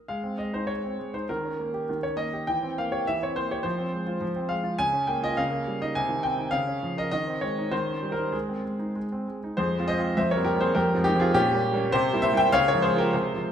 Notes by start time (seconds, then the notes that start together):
0.08 G#3 F5
0.23 C4
0.38 G#3 D#5
0.53 D#4 C5
0.67 G#3 C#5
0.84 C4
0.99 G#3
1.14 D#4 C5
1.29 D#3 A#4
1.44 C#4
1.59 A#3
1.74 G4
1.89 D#3
2.03 C#4 C#5
2.17 A#3 D#5
2.33 G4
2.47 E3 G5
2.63 C4
2.78 A#3 F5
2.92 G4 C#5
3.07 E3 E5
3.22 C4 C#5
3.36 A#3 C5
3.51 G4 C#5
3.63 F3 C5
3.78 C4
3.92 G#3
4.07 F4
4.21 F3
4.36 C4
4.49 G#3 F5
4.64 F4
4.79 C#3 G#5
4.93 C#4
5.07 A#3 G5
5.23 F4 D#5
5.37 C#3 F5
5.51 A#3
5.67 G3
5.81 D#4 D#5
5.95 C3 G#5
6.09 D#3
6.23 C4 G5
6.37 D#4
6.51 C#3 F5
6.67 C#4
6.83 F3
6.97 A#4 D#5
7.11 D#3 D#5
7.27 C4
7.41 G#3 C#5
7.58 D#4
7.71 D#3 C5
7.87 C#4
8.03 G3
8.12 A#4
8.17 D#4
8.32 G#3 G#4
8.49 C4
8.65 G#3
8.79 D#4
8.96 G#3
9.12 C4
9.28 G#3
9.44 D#4
9.57 F2 G#4 C5
9.78 G#3 C4 F4
9.88 C5 D#5
9.97 G#3 C4 F4
10.17 F2 C5 E5
10.31 A#4 C#5
10.36 G3 A#3 C4
10.44 G4 A#4
10.55 G3 A#3 C4
10.61 G#4 C5
10.75 F2 G4 A#4
10.95 F3 G#3 C4
11.04 D#4 G4
11.15 F3 G#3 C4
11.20 F4 G#4
11.34 A#2 C#4 G4
11.54 G3 A#3 C#4
11.73 G3 A#3 C#4
11.92 C3 G4 C5
12.13 G3 A#3 E4
12.22 C5 E5
12.32 G3 A#3 E4
12.37 E5 G5
12.52 C#3 C#5 F5
12.68 A#4 C#5
12.74 F3 G#3 F4
12.82 G#4 C5
12.94 F3 G#3 F4
12.98 G4 A#4
13.13 C3 G#4 C5
13.34 F3 G#3 F4